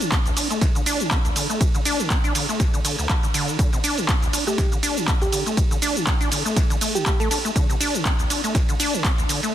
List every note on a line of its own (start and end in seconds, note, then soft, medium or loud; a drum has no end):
0.01 0.13 D3 loud
0.01 closed hi-hat soft
0.01 shaker soft
0.12 0.19 D4 medium
0.12 kick loud
0.12 clap loud
0.12 closed hi-hat medium
0.12 ride medium
0.12 shaker soft
0.26 0.32 D2 medium
0.26 closed hi-hat soft
0.26 shaker soft
0.37 0.48 D4 medium
0.37 open hi-hat loud
0.37 ride medium
0.37 shaker medium
0.50 0.63 A3 medium
0.50 closed hi-hat soft
0.50 shaker soft
0.61 0.66 C3 medium
0.61 kick loud
0.61 snare soft
0.61 closed hi-hat medium
0.61 ride medium
0.61 shaker soft
0.75 0.81 D3 medium
0.75 closed hi-hat soft
0.75 shaker soft
0.86 1.02 D4 loud
0.86 open hi-hat loud
0.86 ride medium
0.86 shaker medium
1.00 1.13 D3 loud
1.00 closed hi-hat soft
1.00 shaker soft
1.11 1.19 D4 medium
1.11 kick loud
1.11 clap loud
1.11 closed hi-hat medium
1.11 ride medium
1.11 shaker soft
1.25 1.31 D2 medium
1.25 closed hi-hat soft
1.25 shaker soft
1.36 1.47 D3 medium
1.36 open hi-hat loud
1.36 ride medium
1.36 shaker medium
1.50 1.62 A3 medium
1.50 closed hi-hat soft
1.50 shaker soft
1.61 1.65 F3 medium
1.61 kick loud
1.61 closed hi-hat medium
1.61 ride medium
1.61 shaker soft
1.74 1.81 D3 medium
1.74 closed hi-hat soft
1.74 shaker soft
1.85 2.01 D4 loud
1.85 open hi-hat loud
1.85 ride medium
1.85 shaker medium
1.99 2.12 D3 loud
1.99 closed hi-hat soft
1.99 shaker soft
2.10 2.18 D4 medium
2.10 kick loud
2.10 clap loud
2.10 closed hi-hat medium
2.10 ride medium
2.10 shaker soft
2.24 2.33 D4 loud
2.24 closed hi-hat soft
2.24 shaker soft
2.35 2.46 D3 medium
2.35 open hi-hat loud
2.35 ride medium
2.35 shaker medium
2.49 2.61 A3 medium
2.49 closed hi-hat soft
2.49 shaker soft
2.60 2.64 F3 medium
2.60 kick loud
2.60 snare soft
2.60 closed hi-hat medium
2.60 ride medium
2.60 shaker soft
2.74 2.80 D3 medium
2.74 closed hi-hat soft
2.74 shaker soft
2.85 2.96 D3 medium
2.85 open hi-hat loud
2.85 ride medium
2.85 shaker medium
2.99 3.08 D2 medium
2.99 closed hi-hat soft
2.99 shaker soft
3.09 3.14 D3 medium
3.09 kick loud
3.09 clap loud
3.09 closed hi-hat medium
3.09 ride medium
3.09 shaker soft
3.23 3.27 D3 medium
3.23 closed hi-hat soft
3.23 shaker soft
3.34 3.50 D3 loud
3.34 open hi-hat loud
3.34 ride medium
3.34 shaker medium
3.48 3.57 D#3 loud
3.48 closed hi-hat soft
3.48 shaker soft
3.59 3.70 D3 medium
3.59 kick loud
3.59 closed hi-hat medium
3.59 ride medium
3.59 shaker soft
3.73 3.79 C3 medium
3.73 closed hi-hat soft
3.73 shaker soft
3.84 3.99 D4 loud
3.84 open hi-hat loud
3.84 ride medium
3.84 shaker medium
3.98 4.10 D3 loud
3.98 closed hi-hat soft
3.98 shaker soft
4.09 4.16 D4 medium
4.09 kick loud
4.09 clap loud
4.09 closed hi-hat medium
4.09 ride medium
4.09 shaker soft
4.22 4.28 D2 medium
4.22 closed hi-hat soft
4.22 shaker soft
4.33 4.45 D4 medium
4.33 open hi-hat loud
4.33 ride medium
4.33 shaker medium
4.47 4.60 A3 medium
4.47 4.54 G4 medium
4.47 closed hi-hat soft
4.47 shaker soft
4.58 4.63 C3 medium
4.58 4.67 G4 medium
4.58 kick loud
4.58 snare soft
4.58 closed hi-hat medium
4.58 ride medium
4.58 shaker soft
4.72 4.78 D3 medium
4.72 closed hi-hat soft
4.72 shaker soft
4.83 4.98 D4 loud
4.83 open hi-hat loud
4.83 ride medium
4.83 shaker medium
4.97 5.09 D3 loud
4.97 closed hi-hat soft
4.97 shaker soft
5.08 5.15 D4 medium
5.08 kick loud
5.08 clap loud
5.08 closed hi-hat medium
5.08 ride medium
5.08 shaker soft
5.21 5.28 D2 medium
5.21 5.29 G4 medium
5.21 closed hi-hat soft
5.21 shaker soft
5.32 5.44 D3 medium
5.32 5.41 G4 medium
5.32 open hi-hat loud
5.32 ride medium
5.32 shaker medium
5.46 5.59 A3 medium
5.46 closed hi-hat soft
5.46 shaker soft
5.57 5.62 F3 medium
5.57 kick loud
5.57 closed hi-hat medium
5.57 ride medium
5.57 shaker soft
5.71 5.77 D3 medium
5.71 closed hi-hat soft
5.71 shaker soft
5.82 5.97 D4 loud
5.82 open hi-hat loud
5.82 ride medium
5.82 shaker medium
5.96 6.08 D3 loud
5.96 closed hi-hat soft
5.96 shaker soft
6.07 6.14 D4 medium
6.07 kick loud
6.07 clap loud
6.07 closed hi-hat medium
6.07 ride medium
6.07 shaker soft
6.21 6.30 D4 loud
6.21 closed hi-hat soft
6.21 shaker soft
6.32 6.43 D3 medium
6.32 open hi-hat loud
6.32 ride medium
6.32 shaker medium
6.45 6.58 A3 medium
6.45 closed hi-hat soft
6.45 shaker soft
6.56 6.61 F3 medium
6.56 kick loud
6.56 snare soft
6.56 closed hi-hat medium
6.56 ride medium
6.56 shaker soft
6.70 6.76 D3 medium
6.70 closed hi-hat soft
6.70 shaker soft
6.81 6.97 A3 medium
6.81 open hi-hat loud
6.81 ride medium
6.81 shaker medium
6.95 7.04 D3 loud
6.95 7.17 G4 loud
6.95 closed hi-hat soft
6.95 shaker soft
7.06 7.14 A3 medium
7.06 kick loud
7.06 clap loud
7.06 closed hi-hat loud
7.06 ride medium
7.06 shaker soft
7.20 7.29 A3 loud
7.20 7.27 A4 medium
7.20 closed hi-hat soft
7.20 shaker soft
7.31 7.38 D4 medium
7.31 7.40 A4 medium
7.31 open hi-hat loud
7.31 ride medium
7.31 shaker medium
7.45 7.51 A3 medium
7.45 closed hi-hat soft
7.45 shaker soft
7.56 7.67 D3 medium
7.56 kick loud
7.56 closed hi-hat loud
7.56 ride medium
7.56 shaker soft
7.70 7.76 C3 medium
7.70 closed hi-hat soft
7.70 shaker soft
7.80 7.96 D4 loud
7.80 open hi-hat loud
7.80 ride medium
7.80 shaker medium
7.94 8.07 D3 loud
7.94 closed hi-hat soft
7.94 shaker soft
8.05 8.13 D4 medium
8.05 kick loud
8.05 clap loud
8.05 closed hi-hat loud
8.05 ride medium
8.05 shaker medium
8.19 8.25 D2 medium
8.19 closed hi-hat soft
8.19 shaker soft
8.30 8.41 D4 medium
8.30 open hi-hat loud
8.30 ride medium
8.30 shaker medium
8.44 8.56 A3 medium
8.44 closed hi-hat soft
8.44 shaker soft
8.55 8.59 C3 medium
8.55 kick loud
8.55 snare soft
8.55 closed hi-hat medium
8.55 ride medium
8.55 shaker soft
8.69 8.75 D3 medium
8.69 closed hi-hat soft
8.69 shaker soft
8.80 8.95 D4 loud
8.80 open hi-hat loud
8.80 ride medium
8.80 shaker medium
8.94 9.06 D3 loud
8.94 closed hi-hat soft
8.94 shaker soft
9.04 9.12 D4 medium
9.04 kick loud
9.04 clap loud
9.04 closed hi-hat loud
9.04 ride medium
9.04 shaker soft
9.18 9.24 D2 medium
9.18 closed hi-hat soft
9.18 shaker soft
9.29 9.41 D3 medium
9.29 open hi-hat loud
9.29 ride medium
9.29 shaker medium
9.43 9.55 A3 medium
9.43 closed hi-hat soft
9.43 shaker soft